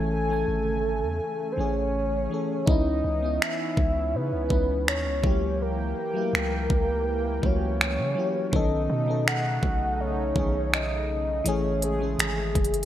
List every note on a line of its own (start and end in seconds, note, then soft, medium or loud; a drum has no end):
0.00 0.45 A1 loud
0.00 2.64 C#3 medium
0.00 0.16 E3 medium
0.00 0.16 A3 medium
0.00 2.65 A3 medium
0.00 0.17 C#4 medium
0.00 0.12 A4 loud
0.00 0.18 G#5 loud
0.00 2.65 G#5 medium
0.13 1.54 A4 loud
0.28 1.26 E3 medium
0.28 1.26 A3 medium
0.28 1.27 C#4 medium
0.33 1.28 G#5 medium
0.48 1.04 G#1 medium
1.03 1.20 E2 medium
1.52 2.12 E3 medium
1.52 1.61 C5 medium
1.58 2.28 A1 loud
1.58 2.13 A3 medium
1.58 2.14 C#4 medium
1.58 2.14 G#4 medium
1.58 2.68 C#5 loud
2.29 2.58 E3 medium
2.29 2.58 A3 medium
2.29 2.59 C#4 medium
2.34 2.60 A4 medium
2.66 3.03 C#2 loud
2.66 5.21 E3 medium
2.66 3.09 B3 medium
2.66 5.21 B3 medium
2.66 5.21 C#4 medium
2.66 3.10 C#4 medium
2.66 3.08 D#4 medium
2.66 3.44 D#5 loud
2.66 kick loud
2.71 3.10 E4 loud
3.04 3.39 C#2 loud
3.21 4.18 E3 medium
3.21 4.19 B3 medium
3.21 4.20 C#4 medium
3.25 4.21 E4 medium
3.42 4.17 E5 loud
3.42 finger snap loud
3.77 4.15 C#2 loud
3.77 kick medium
4.14 4.34 C#3 loud
4.14 4.88 B4 loud
4.32 4.50 C#2 medium
4.49 4.89 C#2 loud
4.49 5.24 B3 medium
4.49 5.24 C#4 medium
4.49 5.23 D#4 medium
4.49 kick medium
4.53 5.24 E4 medium
4.87 5.07 D#2 medium
4.87 5.63 C#5 loud
4.87 finger snap loud
5.05 5.23 C#2 loud
5.22 5.94 C#2 loud
5.22 8.50 E3 medium
5.22 5.96 F#3 medium
5.22 5.30 A3 medium
5.22 8.50 A#3 medium
5.22 5.98 E4 medium
5.22 8.50 G5 medium
5.22 kick loud
5.27 6.00 A#3 medium
5.27 5.98 G4 medium
5.62 5.98 A#4 medium
5.99 7.47 A#4 loud
6.14 7.11 F#3 medium
6.14 6.22 A3 medium
6.14 7.12 E4 medium
6.18 7.15 A#3 medium
6.18 7.13 G4 medium
6.33 6.68 C#2 loud
6.33 finger snap loud
6.70 7.40 C#2 loud
6.70 kick medium
7.42 8.00 C#2 loud
7.42 7.98 F#3 medium
7.42 7.98 A#3 medium
7.42 7.99 E4 medium
7.42 8.57 C#5 loud
7.42 kick medium
7.46 8.00 F#4 medium
7.81 finger snap loud
7.98 8.15 C#3 medium
8.15 8.43 F#3 medium
8.15 8.44 A#3 medium
8.15 8.45 E4 medium
8.19 8.45 G4 medium
8.52 8.88 B1 loud
8.52 12.85 C#3 medium
8.52 8.94 D#3 loud
8.52 11.43 A3 medium
8.52 8.94 B3 medium
8.52 8.95 C#4 medium
8.52 11.43 D#4 medium
8.52 9.27 D#5 loud
8.52 kick loud
8.56 8.96 A4 loud
8.90 9.60 B2 loud
9.06 10.04 D#3 medium
9.06 10.04 B3 medium
9.06 10.05 C#4 medium
9.11 10.06 A4 medium
9.28 10.02 F#5 loud
9.28 finger snap loud
9.63 10.33 B1 medium
9.63 kick medium
10.00 10.76 C#5 loud
10.35 11.42 B1 loud
10.35 11.18 D#3 medium
10.35 11.19 B3 medium
10.35 11.19 C#4 medium
10.35 kick medium
10.39 11.20 G#4 medium
10.74 11.49 D#5 loud
10.74 finger snap medium
11.44 12.16 A1 loud
11.44 11.86 E3 loud
11.44 12.85 A3 medium
11.44 11.87 A3 medium
11.44 11.88 C#4 medium
11.44 12.85 G#4 medium
11.44 11.85 C#5 loud
11.44 closed hi-hat medium
11.49 11.88 G#4 loud
11.82 12.85 G#4 medium
11.82 closed hi-hat medium
11.99 12.85 E3 medium
11.99 12.85 A3 medium
11.99 12.85 C#4 medium
12.03 12.85 G#4 medium
12.19 12.54 G#1 loud
12.19 finger snap loud
12.19 closed hi-hat medium
12.55 12.85 F#1 loud
12.55 kick medium
12.55 closed hi-hat medium
12.65 closed hi-hat medium
12.74 closed hi-hat soft